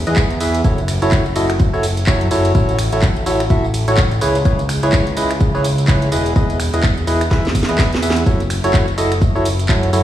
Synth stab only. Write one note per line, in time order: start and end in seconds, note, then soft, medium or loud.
0.07 0.29 E4 medium
0.07 0.29 G#4 medium
0.07 0.29 B4 medium
0.07 0.29 D#5 loud
0.41 0.61 E4 medium
0.41 0.61 G#4 medium
0.41 0.61 B4 medium
0.41 0.61 E5 medium
0.64 0.80 E4 medium
0.64 0.80 F#4 medium
0.64 0.80 A4 medium
0.64 0.80 C#5 medium
1.02 1.24 E4 loud
1.02 1.24 F#4 medium
1.02 1.24 A4 medium
1.02 1.24 C#5 loud
1.36 1.51 E4 medium
1.36 1.51 F#4 medium
1.36 1.51 A4 medium
1.36 1.51 D#5 loud
1.73 1.86 E4 medium
1.73 1.86 F#4 medium
1.73 1.86 A4 medium
1.73 1.86 C#5 loud
2.07 2.28 E4 medium
2.07 2.28 F#4 medium
2.07 2.28 A4 medium
2.07 2.28 C#5 loud
2.31 2.53 E4 medium
2.31 2.53 F#4 medium
2.31 2.53 A4 medium
2.31 2.53 C#5 loud
2.55 2.77 E4 medium
2.55 2.77 F#4 medium
2.55 2.77 A4 medium
2.55 2.77 C#5 loud
2.93 3.05 E4 medium
2.93 3.05 F#4 medium
2.93 3.05 A4 medium
2.93 3.05 C#5 loud
3.26 3.42 E4 medium
3.26 3.42 F#4 medium
3.26 3.42 A4 medium
3.26 3.42 C#5 loud
3.50 3.66 E4 medium
3.50 3.66 F#4 medium
3.50 3.66 A4 medium
3.50 3.66 E5 loud
3.88 4.00 E4 loud
3.88 4.00 F#4 medium
3.88 4.00 A4 medium
3.88 4.00 C#5 loud
4.22 4.37 E4 medium
4.22 4.37 G#4 medium
4.22 4.37 B4 medium
4.22 4.37 C#5 loud
4.45 4.61 E4 medium
4.45 4.61 G#4 medium
4.45 4.61 B4 medium
4.45 4.61 C#5 medium
4.83 5.05 E4 loud
4.83 5.05 G#4 medium
4.83 5.05 B4 medium
4.83 5.05 C#5 loud
5.17 5.32 E4 medium
5.17 5.32 G#4 medium
5.17 5.32 B4 medium
5.17 5.32 D#5 loud
5.55 5.67 E4 loud
5.55 5.67 G#4 medium
5.55 5.67 B4 medium
5.55 5.67 C#5 loud
5.88 6.09 E4 medium
5.88 6.09 G#4 medium
5.88 6.09 B4 medium
5.88 6.09 C#5 medium
6.12 6.34 E4 medium
6.12 6.34 G#4 medium
6.12 6.34 B4 medium
6.12 6.34 D#5 loud
6.36 6.58 E4 medium
6.36 6.58 G#4 medium
6.36 6.58 B4 medium
6.36 6.58 D#5 loud
6.74 6.86 E4 medium
6.74 6.86 G#4 medium
6.74 6.86 B4 medium
6.74 6.86 D#5 loud
7.07 7.23 E4 medium
7.07 7.23 G#4 medium
7.07 7.23 B4 medium
7.07 7.23 D#5 loud
7.31 7.47 E4 loud
7.31 7.47 G#4 medium
7.31 7.47 B4 medium
7.31 7.47 E5 loud
7.69 7.91 E4 medium
7.69 7.91 G#4 medium
7.69 7.91 B4 medium
7.69 7.91 D#5 medium
8.03 8.23 E4 medium
8.03 8.23 G#4 medium
8.03 8.23 B4 medium
8.03 8.23 E5 medium
8.26 8.42 E4 medium
8.26 8.42 F#4 medium
8.26 8.42 A4 medium
8.26 8.42 C#5 medium
8.64 8.86 E4 loud
8.64 8.86 F#4 medium
8.64 8.86 A4 medium
8.64 8.86 C#5 loud
8.98 9.13 E4 medium
8.98 9.13 F#4 medium
8.98 9.13 A4 medium
8.98 9.13 D#5 loud
9.35 9.48 E4 loud
9.35 9.48 F#4 medium
9.35 9.48 A4 medium
9.35 9.48 C#5 loud
9.69 9.90 E4 medium
9.69 9.90 F#4 medium
9.69 9.90 A4 medium
9.69 9.90 C#5 medium
9.93 10.03 E4 loud
9.93 10.03 F#4 medium
9.93 10.03 A4 medium
9.93 10.03 C#5 loud